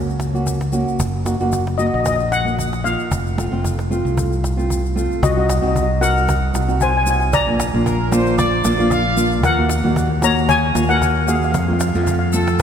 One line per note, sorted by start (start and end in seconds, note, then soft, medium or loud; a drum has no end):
0.00 0.84 C#2 medium
0.10 shaker soft
0.20 cajon slap medium
0.20 shaker medium
0.33 0.58 A#3 medium
0.33 0.58 C#4 medium
0.33 0.58 F#4 medium
0.33 cajon slap soft
0.33 shaker soft
0.47 cajon bass medium
0.47 shaker medium
0.61 cajon slap medium
0.61 shaker soft
0.72 0.99 A#3 medium
0.72 0.99 C#4 medium
0.72 0.99 F#4 medium
0.72 cajon slap soft
0.72 shaker medium
0.87 cajon slap soft
0.87 shaker soft
1.00 1.36 F#1 medium
1.00 cajon bass medium
1.00 shaker medium
1.25 1.34 A#3 medium
1.25 1.34 D#4 medium
1.25 1.34 F#4 medium
1.25 cajon slap medium
1.25 shaker medium
1.40 1.89 F#1 medium
1.40 1.64 A#3 medium
1.40 1.64 D#4 medium
1.40 1.64 F#4 medium
1.40 cajon slap soft
1.40 shaker soft
1.52 cajon bass medium
1.52 shaker medium
1.67 cajon slap medium
1.78 2.19 A#3 medium
1.78 2.19 D#4 medium
1.78 2.20 F#4 medium
1.78 1.85 D#5 medium
1.78 cajon slap soft
1.78 shaker medium
1.87 1.93 D#5 medium
1.94 2.95 A#1 medium
1.94 1.99 D#5 medium
1.94 cajon slap soft
2.00 2.07 D#5 medium
2.06 2.15 D#5 medium
2.06 cajon bass loud
2.06 shaker medium
2.16 2.24 D#5 medium
2.16 shaker soft
2.32 2.86 F#5 loud
2.32 cajon slap medium
2.32 shaker medium
2.44 2.69 A#3 medium
2.44 2.69 D#4 soft
2.44 2.69 F#4 medium
2.44 cajon slap soft
2.44 shaker soft
2.59 cajon bass medium
2.59 shaker medium
2.73 cajon slap medium
2.73 shaker soft
2.84 3.11 A#3 medium
2.84 3.11 D#4 medium
2.84 3.11 F4 medium
2.84 4.65 F5 medium
2.84 cajon slap soft
2.84 shaker medium
2.99 cajon slap soft
2.99 shaker soft
3.11 3.48 F1 medium
3.11 cajon bass medium
3.11 shaker medium
3.27 shaker soft
3.37 3.46 A3 medium
3.37 3.46 C4 medium
3.37 3.46 F4 medium
3.37 cajon slap medium
3.37 shaker medium
3.51 4.01 F1 medium
3.51 3.75 A3 medium
3.51 3.75 C4 medium
3.51 3.75 F4 medium
3.51 cajon slap soft
3.64 cajon bass medium
3.64 shaker medium
3.79 cajon slap medium
3.79 shaker soft
3.90 4.31 A3 medium
3.90 4.31 C4 medium
3.90 4.31 F4 medium
3.90 cajon slap soft
3.90 shaker medium
4.05 5.06 C2 medium
4.05 cajon slap soft
4.05 shaker soft
4.17 cajon bass loud
4.17 shaker medium
4.32 shaker soft
4.44 cajon slap medium
4.44 shaker medium
4.57 4.81 A3 medium
4.57 4.81 C4 medium
4.57 4.81 F4 medium
4.57 cajon slap soft
4.57 shaker soft
4.70 cajon bass medium
4.70 shaker medium
4.86 shaker soft
4.95 5.22 A3 medium
4.95 5.22 C4 medium
4.95 5.22 F4 medium
4.95 cajon slap soft
4.95 shaker medium
5.11 cajon slap soft
5.11 shaker soft
5.23 5.59 C2 loud
5.23 5.30 F#4 medium
5.23 5.30 D#5 medium
5.23 cajon bass loud
5.23 shaker medium
5.31 5.38 D#5 soft
5.36 5.52 C4 medium
5.36 5.51 D#4 medium
5.36 5.52 F#4 medium
5.36 5.45 D#5 medium
5.46 5.51 D#5 medium
5.46 cajon slap medium
5.46 shaker medium
5.53 5.60 D#5 medium
5.61 6.50 C2 medium
5.61 5.86 C4 medium
5.61 5.86 D#4 medium
5.61 5.86 F#4 medium
5.61 5.67 D#5 soft
5.61 cajon slap soft
5.68 5.74 D#5 medium
5.75 5.82 D#5 soft
5.75 cajon bass medium
5.75 shaker medium
5.83 5.91 D#5 medium
6.00 6.33 C4 medium
6.00 6.33 D#4 medium
6.00 6.33 F#4 medium
6.00 6.77 A#4 medium
6.00 6.83 F#5 medium
6.00 cajon slap medium
6.00 shaker medium
6.17 cajon slap soft
6.17 shaker soft
6.29 cajon bass loud
6.29 shaker medium
6.53 7.33 C2 medium
6.53 6.62 C4 medium
6.53 6.62 D#4 medium
6.53 6.62 F#4 medium
6.53 cajon slap medium
6.53 shaker medium
6.68 6.92 C4 medium
6.68 6.92 D#4 medium
6.68 6.92 F#4 medium
6.68 cajon slap soft
6.68 shaker soft
6.81 6.89 C5 medium
6.81 6.89 G#5 medium
6.81 cajon bass medium
6.81 shaker medium
6.90 6.96 G#5 medium
6.97 7.02 G#5 medium
7.03 7.30 C4 medium
7.03 7.30 D#4 medium
7.03 7.09 G#5 medium
7.03 cajon slap soft
7.03 shaker loud
7.07 7.31 F#4 medium
7.07 7.19 G#5 medium
7.20 7.27 G#5 medium
7.20 cajon slap soft
7.20 shaker soft
7.33 7.70 A#1 loud
7.33 9.13 D5 medium
7.33 9.14 A#5 loud
7.33 cajon bass loud
7.33 shaker medium
7.47 7.62 A#3 medium
7.47 7.62 D4 medium
7.47 7.62 F4 medium
7.60 cajon slap medium
7.60 shaker loud
7.73 8.61 A#1 medium
7.73 7.97 A#3 medium
7.73 7.97 D4 medium
7.73 7.97 F4 medium
7.73 cajon slap soft
7.86 8.10 A#4 medium
7.86 cajon bass medium
7.86 shaker medium
8.11 8.44 A#3 loud
8.11 8.44 D4 medium
8.11 8.44 F4 loud
8.11 8.38 C5 medium
8.11 cajon slap medium
8.11 shaker medium
8.27 cajon slap soft
8.27 shaker soft
8.38 8.63 D5 loud
8.38 cajon bass loud
8.38 shaker medium
8.64 9.43 A#1 medium
8.64 8.73 A#3 medium
8.64 8.73 D4 medium
8.64 8.73 F4 medium
8.64 8.89 D5 medium
8.64 cajon slap medium
8.64 shaker loud
8.78 9.02 A#3 medium
8.78 9.02 D4 medium
8.78 9.02 F4 loud
8.78 cajon slap soft
8.78 shaker soft
8.91 9.32 F5 loud
8.91 cajon bass medium
8.91 shaker medium
9.17 9.41 A#3 medium
9.17 9.41 D4 medium
9.17 9.41 F4 loud
9.17 cajon slap soft
9.17 shaker loud
9.31 cajon slap soft
9.31 shaker soft
9.43 9.80 D#2 loud
9.43 10.18 A#4 medium
9.43 10.26 F#5 loud
9.43 cajon bass loud
9.43 shaker medium
9.57 9.73 A#3 medium
9.57 9.73 D#4 medium
9.57 9.73 F#4 medium
9.69 cajon slap medium
9.69 shaker medium
9.84 10.71 D#2 medium
9.84 10.07 A#3 medium
9.84 10.08 D#4 medium
9.84 10.08 F#4 medium
9.84 cajon slap soft
9.96 cajon bass medium
9.96 shaker medium
10.21 10.54 A#3 medium
10.21 10.54 D#4 medium
10.21 10.54 F#4 medium
10.21 10.36 C#5 medium
10.21 10.36 A#5 loud
10.21 cajon slap medium
10.21 shaker medium
10.36 cajon slap soft
10.36 shaker soft
10.49 10.86 C#5 medium
10.49 10.91 G#5 loud
10.49 cajon bass loud
10.49 shaker medium
10.74 11.54 D#2 medium
10.74 10.83 A#3 medium
10.74 10.83 D#4 medium
10.74 10.83 F4 medium
10.74 cajon slap medium
10.74 shaker medium
10.89 11.12 A#3 medium
10.89 11.12 D#4 medium
10.89 11.12 F#4 medium
10.89 11.25 A#4 medium
10.89 11.29 F#5 medium
10.89 cajon slap soft
10.89 shaker soft
11.02 cajon bass medium
11.02 shaker medium
11.27 11.51 A#3 medium
11.27 11.51 D#4 medium
11.27 11.52 F#4 medium
11.27 11.35 G#4 medium
11.27 11.34 F5 medium
11.27 cajon slap soft
11.27 shaker loud
11.36 11.43 F5 medium
11.42 11.50 F5 medium
11.42 cajon slap soft
11.42 shaker soft
11.52 11.90 F2 loud
11.52 11.58 F5 medium
11.52 cajon bass loud
11.52 shaker medium
11.59 11.65 F5 medium
11.67 11.83 A3 medium
11.67 11.83 C4 medium
11.67 11.83 F4 medium
11.67 11.72 F5 soft
11.73 11.78 F5 medium
11.79 11.87 F5 soft
11.79 cajon slap loud
11.79 shaker medium
11.88 11.95 F5 medium
11.94 12.62 F2 medium
11.94 12.18 A3 medium
11.94 12.18 C4 medium
11.94 12.18 F4 medium
11.94 12.02 F5 soft
11.94 cajon slap soft
11.94 shaker soft
12.04 12.10 F5 medium
12.04 cajon bass medium
12.04 shaker medium
12.11 12.18 F5 soft
12.19 12.25 F5 medium
12.33 12.62 A3 medium
12.33 12.62 C4 medium
12.33 12.62 F4 medium
12.33 12.57 A4 medium
12.33 cajon slap soft
12.33 shaker medium
12.47 cajon slap medium
12.47 shaker soft